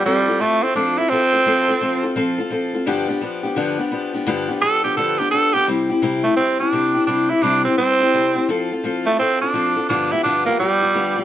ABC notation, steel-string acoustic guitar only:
X:1
M:4/4
L:1/8
Q:"Swing" 1/4=171
K:C
V:1 name="Steel-string acoustic guitar"
[F,CFA] [CFA] [F,CFA] [CFA] [F,CFA] [CFA] [F,CFA] [CFA] | [F,CFA] [CFA] [F,CFA] [CFA] [F,CFA] [CFA] [F,CFA] [CFA] | [G,,D,F,B,DG] [F,B,DG] [F,B,DG] [F,B,DG] [G,,D,F,B,DG] [F,B,DG] [F,B,DG] [F,B,DG] | [G,,D,F,B,DG] [F,B,DG] [F,B,DG] [F,B,DG] [G,,D,F,B,DG] [F,B,DG] [F,B,DG] [F,B,DG] |
[C,G,CEG] [CEG] [C,G,CEG] [CEG] [G,CEG] [CEG] [C,G,CEG] [CEG] | [C,G,CEG] [CEG] [C,G,CEG] [CEG] [G,CEG] [CEG] [C,G,CEG] [CEG] | [F,CFA] [CFA] [F,CFA] [CFA] [F,CFA] [CFA] [F,CFA] [CFA] | [G,,D,F,B,FG] [F,B,FG] [G,,D,F,B,FG] [F,B,FG] [F,B,FG] [F,B,FG] [G,,D,F,B,FG] [F,B,FG] |]